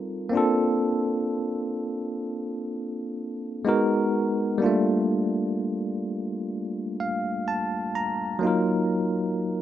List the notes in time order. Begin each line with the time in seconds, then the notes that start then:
Already playing: G3 C4 D#4 F4 A4
0.29 A#3 C4 D4
0.35 F4 A4
3.65 G#3 B3 D#4 F#4
3.69 A#4
4.58 G3 A#3
4.62 A3 D4 F4
7.00 F5
7.48 A5
7.95 A#5
8.39 F#3 A#3 D#4
8.45 F4 A#4